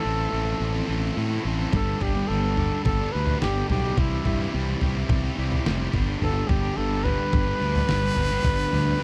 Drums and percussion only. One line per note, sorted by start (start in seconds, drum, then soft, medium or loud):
1.73 kick loud
1.73 floor tom medium
2.00 kick medium
2.00 floor tom medium
2.57 floor tom medium
2.85 kick loud
2.85 floor tom medium
2.85 mid tom medium
3.27 floor tom medium
3.42 snare medium
3.70 floor tom medium
3.97 kick loud
3.97 floor tom medium
4.25 kick medium
4.25 floor tom medium
4.81 floor tom medium
5.09 kick loud
5.09 floor tom medium
5.09 mid tom medium
5.52 floor tom medium
5.66 snare medium
5.93 kick medium
5.93 floor tom medium
6.22 floor tom medium
6.49 kick medium
6.49 floor tom medium
7.05 floor tom medium
7.33 kick loud
7.33 floor tom medium
7.33 mid tom medium
7.76 floor tom medium
7.89 snare medium
8.16 floor tom medium
8.44 kick loud
8.44 floor tom medium
8.73 floor tom medium